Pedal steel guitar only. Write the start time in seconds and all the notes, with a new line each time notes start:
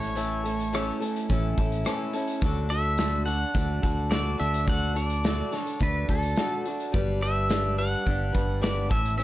Already playing: C#5
2.70 E5
3.26 F#5
4.11 D5
4.40 E5
4.69 F#5
4.97 D5
5.56 C#5
5.83 B4
6.10 A4
7.22 E5
7.79 F#5
8.63 D5
8.91 E5
9.18 E5